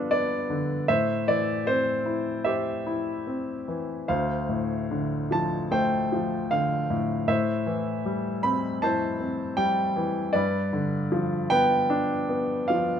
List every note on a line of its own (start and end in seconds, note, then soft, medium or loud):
0.00 0.84 G2 medium
0.00 0.50 D3 soft
0.00 0.11 B3 soft
0.00 0.90 D4 medium
0.00 0.84 F4 medium
0.00 0.90 A4 medium
0.00 0.90 B4 medium
0.11 0.86 B3 soft
0.11 0.91 D5 medium
0.50 0.87 D3 soft
0.88 4.04 A2 soft
0.88 1.65 C5 medium
0.88 1.28 E5 medium
1.28 2.82 E3 soft
1.28 1.68 D5 medium
1.66 3.22 C4 soft
1.66 2.44 C5 medium
2.06 2.85 E4 soft
2.44 4.04 G4 soft
2.44 4.04 C5 soft
2.44 3.63 E5 medium
2.86 4.05 E4 soft
3.27 4.06 C4 soft
3.68 4.07 E3 soft
4.08 7.25 D2 soft
4.08 5.68 C5 soft
4.08 5.35 F5 medium
4.49 6.08 A2 soft
4.91 6.48 D3 soft
5.31 6.11 F3 soft
5.31 5.74 A5 medium
5.71 7.24 A3 soft
5.71 7.24 C5 medium
5.71 6.54 G5 medium
6.12 7.25 F3 soft
6.51 7.26 D3 soft
6.51 7.30 F5 medium
6.90 7.26 A2 soft
7.28 10.30 A2 medium
7.28 8.78 C5 soft
7.28 8.47 E5 medium
7.66 9.16 E3 soft
8.05 9.54 G3 soft
8.43 9.18 C4 soft
8.43 8.83 B5 medium
8.82 10.30 E4 soft
8.82 10.31 C5 medium
8.82 9.60 A5 medium
9.20 10.31 C4 soft
9.57 10.32 G3 soft
9.57 10.36 G5 medium
9.96 10.33 E3 soft
10.33 13.00 G2 medium
10.33 11.49 B4 soft
10.33 11.54 D5 medium
10.73 12.25 D3 soft
11.12 12.65 F3 medium
11.50 12.27 B3 soft
11.50 13.00 B4 medium
11.50 12.72 G5 medium
11.90 13.00 D4 medium
12.29 13.00 B3 soft
12.68 13.00 F3 soft
12.68 13.00 F5 medium